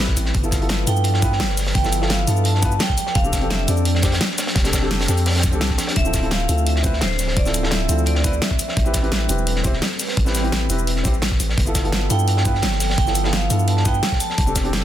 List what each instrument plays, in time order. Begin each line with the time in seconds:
Already playing: 808-style bass A1, ambient pad G3 C4 A4 B4, grand piano C4 E4 G4 B4
0.08 kick, snare
0.17 808-style bass A1, closed hi-hat, cabasa
0.25 snare
0.34 808-style bass G1, ambient pad F3 D5, kick, closed hi-hat
0.42 grand piano B3 E4 F4 A4, cabasa
0.51 kick, snare, closed hi-hat, cabasa
0.60 grand piano B3 E4 F4 A4, closed hi-hat
0.69 snare, closed hi-hat
0.86 808-style bass G2, grand piano B3 E4 F4 A4, vibraphone G5, closed hi-hat, cabasa
0.96 cabasa
1.04 closed hi-hat
1.14 snare
1.21 grand piano B3 E4 F4 B4, kick, closed hi-hat, cabasa
1.32 snare
1.40 808-style bass G1, snare, closed hi-hat
1.49 snare
1.57 snare, closed hi-hat, open hi-hat, cabasa
1.66 snare
1.74 808-style bass G1, vibraphone G5, kick, closed hi-hat
1.83 grand piano B3 E4 F4 A4, snare, cabasa
1.93 closed hi-hat, cabasa
2.00 grand piano B3 E4 F4 A4, snare
2.09 vibraphone F5, snare, closed hi-hat
2.26 808-style bass G2, grand piano B3 E4 F4 A4, closed hi-hat, cabasa
2.37 cabasa
2.44 vibraphone A5, closed hi-hat
2.55 snare
2.61 grand piano B3 E4 F4 B4, kick, closed hi-hat, cabasa
2.72 cabasa
2.79 vibraphone G5, snare, closed hi-hat
2.89 kick, snare
2.97 ambient pad F3 A3 D4 G4, closed hi-hat, cabasa
3.07 snare
3.14 808-style bass F1, vibraphone F5, kick, closed hi-hat
3.23 grand piano C4 D4 G4 A4, cabasa
3.33 kick, snare, closed hi-hat, cabasa
3.41 grand piano C4 D4 G4 A4, closed hi-hat
3.50 vibraphone E5, snare, closed hi-hat
3.67 808-style bass F2, grand piano C4 D4 G4 A4, vibraphone D5, closed hi-hat, cabasa
3.77 cabasa
3.85 closed hi-hat
3.95 snare
4.02 grand piano C4 D4 G4 C5, kick, snare, closed hi-hat, cabasa
4.12 snare, closed hi-hat
4.21 snare, closed hi-hat
4.31 snare
4.38 snare, closed hi-hat, cabasa
4.47 snare, closed hi-hat
4.55 808-style bass F1, kick, snare, closed hi-hat
4.64 grand piano C4 D4 G4 A4, snare, closed hi-hat, cabasa
4.73 kick, snare, closed hi-hat, cabasa
4.81 grand piano C4 D4 G4 A4, snare
4.91 snare, closed hi-hat
5.01 snare, closed hi-hat
5.07 808-style bass F2, grand piano C4 D4 G4 A4, snare, closed hi-hat, cabasa
5.17 closed hi-hat, cabasa
5.26 snare, closed hi-hat
5.31 snare, closed hi-hat
5.35 snare, closed hi-hat
5.39 snare, closed hi-hat
5.43 kick, closed hi-hat, cabasa
5.50 808-style bass C2, grand piano C4 D4 G4, cabasa
5.55 grand piano A4
5.61 snare, closed hi-hat
5.70 kick, snare
5.78 snare, closed hi-hat, cabasa
5.87 snare, closed hi-hat
5.96 808-style bass D1, ambient pad F3 C4 A4, vibraphone E5, kick, closed hi-hat
6.04 grand piano C4 E4 F4 A4, cabasa
6.13 kick, snare, closed hi-hat, cabasa
6.22 grand piano C4 E4 F4 A4, closed hi-hat
6.31 vibraphone F5, snare, closed hi-hat
6.48 808-style bass D2, grand piano C4 E4 F4 A4, closed hi-hat, cabasa
6.58 cabasa
6.67 vibraphone E5, closed hi-hat
6.76 snare
6.83 grand piano C4 E4 F4 B4, kick, closed hi-hat, cabasa
6.93 snare
7.01 808-style bass D1, vibraphone C5, snare, closed hi-hat
7.11 snare
7.19 snare, closed hi-hat, open hi-hat, cabasa
7.28 snare
7.37 808-style bass D1, vibraphone D5, kick, closed hi-hat
7.45 grand piano C4 E4 F4 A4, snare, cabasa
7.54 closed hi-hat, cabasa
7.62 grand piano C4 E4 F4 A4, snare
7.71 vibraphone E5, snare, closed hi-hat
7.88 808-style bass D2, grand piano C4 E4 F4 A4, closed hi-hat, cabasa
7.98 cabasa
8.06 vibraphone D5, closed hi-hat
8.15 snare
8.23 grand piano C4 E4 F4 B4, kick, closed hi-hat, cabasa
8.33 cabasa
8.42 vibraphone E5, snare, closed hi-hat
8.51 kick, snare
8.59 closed hi-hat, cabasa
8.68 snare
8.77 808-style bass A1, ambient pad G3 A4 B4, kick, closed hi-hat
8.84 grand piano C4 E4 G4 B4, cabasa
8.93 kick, snare, closed hi-hat, cabasa
9.02 grand piano C4 E4 G4 B4, closed hi-hat
9.12 snare, closed hi-hat
9.28 808-style bass E1, grand piano C4 E4 G4 B4, closed hi-hat, cabasa
9.38 cabasa
9.47 closed hi-hat
9.56 snare
9.63 grand piano C4 E4 G4 C5, kick, closed hi-hat, cabasa
9.73 snare
9.82 snare, closed hi-hat
9.92 snare
10.00 snare, closed hi-hat, open hi-hat, cabasa
10.08 snare
10.17 808-style bass A1, kick, closed hi-hat
10.25 grand piano C4 E4 G4 B4, snare, cabasa
10.35 snare, closed hi-hat, cabasa
10.42 grand piano C4 E4 G4 B4, closed hi-hat
10.52 snare, closed hi-hat
10.69 808-style bass E1, grand piano C4 E4 G4 B4, closed hi-hat, cabasa
10.71 closed hi-hat
10.79 cabasa
10.87 closed hi-hat
10.96 snare
11.03 808-style bass A1, grand piano C4 E4 G4 C5, kick, closed hi-hat, cabasa
11.14 cabasa
11.22 snare, closed hi-hat
11.31 kick, snare
11.40 808-style bass A1, closed hi-hat, cabasa
11.49 snare
11.57 808-style bass G1, ambient pad F3 B3 D5, kick, closed hi-hat
11.66 grand piano B3 E4 F4 A4, cabasa
11.75 kick, snare, closed hi-hat, cabasa
11.83 grand piano B3 E4 F4 A4, closed hi-hat
11.92 snare, closed hi-hat
12.09 808-style bass G2, grand piano B3 E4 F4 A4, vibraphone G5, closed hi-hat, cabasa
12.19 cabasa
12.28 closed hi-hat
12.37 snare
12.45 grand piano B3 E4 F4 B4, kick, closed hi-hat, cabasa
12.55 snare
12.62 808-style bass G1, snare, closed hi-hat
12.72 snare
12.80 snare, closed hi-hat, open hi-hat, cabasa
12.90 snare
12.98 808-style bass G1, vibraphone G5, kick, closed hi-hat
13.06 grand piano B3 E4 F4 A4, snare, cabasa
13.15 closed hi-hat, cabasa
13.23 grand piano B3 E4 F4 A4, snare
13.33 vibraphone F5, snare, closed hi-hat
13.49 808-style bass G2, grand piano B3 E4 F4 A4, closed hi-hat, cabasa
13.59 cabasa
13.68 vibraphone A5, closed hi-hat
13.77 snare
13.84 grand piano B3 E4 F4 B4, vibraphone G5, kick, closed hi-hat, cabasa
13.94 cabasa
14.03 snare, closed hi-hat
14.12 kick, snare
14.20 ambient pad G3 D4 F4, vibraphone A5, closed hi-hat, cabasa
14.30 snare
14.38 808-style bass F1, kick, closed hi-hat
14.46 grand piano C4 D4 G4 A4, cabasa
14.55 kick, snare, closed hi-hat, cabasa
14.64 grand piano C4 D4 G4 A4, closed hi-hat
14.73 snare, closed hi-hat